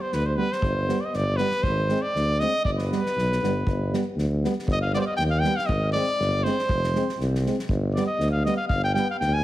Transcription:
0.01 trumpet C5
0.12 tuba D2, trumpet B4, snare
0.26 trumpet C5
0.36 euphonium G3, trombone B3, trumpet B4
0.52 trumpet C5, snare
0.62 tuba G1, kick
0.88 euphonium G3, trombone B3, snare
1.01 trumpet D5
1.05 trumpet D#5
1.14 tuba G1, trumpet D5, snare
1.37 euphonium G3, trombone B3, trumpet B4, snare
1.51 snare
1.63 tuba G#1, trumpet C5, kick
1.89 euphonium G#3, trombone C4, snare
2.02 trumpet D5
2.15 tuba D2, snare
2.40 euphonium G#3, trombone C4, trumpet D#5, snare
2.65 tuba G1, trumpet D5, kick
2.78 trumpet B4, snare
2.91 euphonium G3, trombone B3, snare
3.06 snare
3.17 tuba B1, snare
3.32 snare
3.42 tuba G1, euphonium G3, trombone B3, snare
3.67 tuba G1, kick
3.92 euphonium G3, trombone B3, snare
4.17 tuba D2, snare
4.43 euphonium G3, trombone B3, snare
4.59 snare
4.68 tuba G1, kick
4.72 trumpet D#5
4.82 trumpet F5
4.93 euphonium G3, trombone B3, trumpet C5 D5, snare
5.00 trumpet D5
5.07 trumpet D#5
5.17 tuba D#2, trumpet G5, snare
5.30 trumpet F5
5.40 euphonium G3, trumpet G5
5.44 trombone B3, snare
5.56 trumpet F5, snare
5.66 tuba G#1, trumpet D#5, kick
5.92 euphonium G#3, trombone C4, trumpet D5, snare
6.19 tuba G1, snare
6.44 euphonium G#3, trombone C4, trumpet C5, snare
6.59 snare
6.69 tuba F1, kick
6.84 snare
6.94 euphonium G#3, trombone C4, snare
7.09 snare
7.19 tuba C2, snare
7.35 snare
7.46 euphonium G#3, trombone C4, snare
7.59 snare
7.69 tuba G1, kick
7.94 euphonium G3, trombone B3, trumpet D5, snare
8.07 trumpet D#5
8.19 tuba D2, snare
8.31 trumpet F5
8.44 euphonium G3, trombone B3, trumpet D#5, snare
8.57 trumpet F5
8.68 tuba G1, trumpet F5, kick
8.84 trumpet G5
8.94 euphonium G3, trombone B3, trumpet G5, snare
9.11 trumpet F5
9.19 tuba D2, trumpet G5, snare
9.34 trumpet G#5

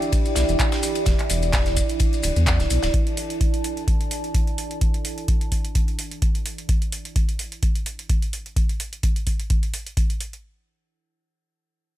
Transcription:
Already playing: analog synth pad D4 E4 G4, ambient pad E4 D5 G5
0.02 closed hi-hat, maracas
0.12 kick, closed hi-hat, ride, maracas
0.25 closed hi-hat, maracas
0.35 analog synth bass B1, snare, open hi-hat, ride, maracas
0.49 analog synth bass E1, closed hi-hat, maracas
0.60 kick, clap, closed hi-hat, maracas
0.72 snare, closed hi-hat, ride, maracas
0.83 open hi-hat, maracas
0.95 closed hi-hat, ride, maracas
1.06 analog synth bass E1, kick, snare, closed hi-hat, ride, maracas
1.19 clap, closed hi-hat
1.29 analog synth bass E1, open hi-hat, ride, maracas
1.43 closed hi-hat, maracas
1.53 kick, snare, clap, closed hi-hat, ride, maracas
1.66 snare, closed hi-hat, maracas
1.77 kick, open hi-hat, ride, maracas
1.85 ambient pad A5, maracas
1.89 closed hi-hat
2.00 kick, closed hi-hat, ride, maracas
2.13 closed hi-hat, maracas
2.23 analog synth bass D1, open hi-hat, ride, maracas
2.36 analog synth bass E2, closed hi-hat, maracas
2.46 kick, snare, clap, closed hi-hat, ride, maracas
2.60 analog synth bass D1, snare, closed hi-hat, maracas
2.70 analog synth bass B1, open hi-hat, ride, maracas
2.83 analog synth bass D1, snare, closed hi-hat, ride, maracas
2.94 kick, closed hi-hat
3.07 closed hi-hat
3.17 open hi-hat
3.30 closed hi-hat
3.41 kick, closed hi-hat
3.54 closed hi-hat
3.64 open hi-hat
3.77 closed hi-hat
3.88 kick, closed hi-hat
4.01 closed hi-hat
4.11 open hi-hat
4.24 closed hi-hat
4.35 kick, closed hi-hat
4.47 closed hi-hat
4.58 open hi-hat
4.71 closed hi-hat
4.81 kick, closed hi-hat
4.94 closed hi-hat
5.05 open hi-hat
5.18 closed hi-hat
5.28 kick, closed hi-hat
5.41 closed hi-hat
5.52 kick, open hi-hat
5.65 closed hi-hat
5.75 kick, closed hi-hat
5.88 closed hi-hat
5.99 open hi-hat
6.11 closed hi-hat
6.22 kick, closed hi-hat
6.35 closed hi-hat
6.46 open hi-hat
6.58 closed hi-hat
6.69 kick, closed hi-hat
6.82 closed hi-hat
6.92 open hi-hat
7.05 closed hi-hat
7.16 kick, closed hi-hat
7.29 closed hi-hat
7.39 open hi-hat
7.52 closed hi-hat
7.63 kick, closed hi-hat
7.75 closed hi-hat
7.86 open hi-hat
7.99 closed hi-hat
8.10 kick, closed hi-hat
8.22 closed hi-hat
8.33 open hi-hat
8.46 closed hi-hat
8.56 kick, closed hi-hat
8.69 closed hi-hat
8.80 open hi-hat
8.93 closed hi-hat
9.03 kick, closed hi-hat
9.16 closed hi-hat
9.27 kick, open hi-hat
9.40 closed hi-hat
9.50 kick, closed hi-hat
9.63 closed hi-hat
9.74 open hi-hat
9.87 closed hi-hat
9.97 kick, closed hi-hat
10.10 closed hi-hat
10.20 open hi-hat
10.33 closed hi-hat

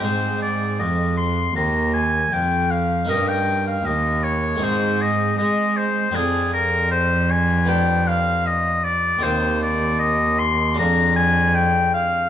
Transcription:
Already playing: harpsichord G#3
0.00 cello G#2, harpsichord G#2 C4 D#4 G#4
0.04 oboe C5
0.42 oboe D5
0.79 cello F2, harpsichord F2, oboe D#5
1.17 oboe C6
1.55 cello D#2, harpsichord D#2, oboe A#5
1.94 oboe G#5
2.32 cello F2, harpsichord F2, oboe G5
2.71 oboe F5
3.05 harpsichord C#4 D#4 A#4
3.09 cello G2, harpsichord G2, oboe D#5
3.28 oboe G5
3.67 oboe F5
3.85 cello D#2, harpsichord D#2, oboe D#5
4.24 oboe C#5
4.56 harpsichord G#3 C4 D#4
4.60 cello G#2, harpsichord G#2 G#4, oboe C5
5.01 oboe D#5
5.38 cello G#3, harpsichord G#3, oboe D#5
5.77 oboe C5
6.11 cello F2, harpsichord C4 D4 G#4
6.16 harpsichord F2, oboe G#4
6.54 oboe A#4
6.91 oboe C5
7.31 oboe G#5
7.65 harpsichord B3 D4 G4, oboe G5
8.08 oboe F5
8.46 oboe D#5
8.85 oboe D5
9.18 harpsichord C4 D#4 G4
9.23 cello D#2, harpsichord D#2, oboe C5
9.63 oboe D5
10.00 oboe D#5
10.39 oboe C6
10.74 cello F2, harpsichord D4 G#4
10.79 harpsichord F2, oboe A#5
11.16 oboe G#5
11.55 oboe G5
11.94 oboe F5

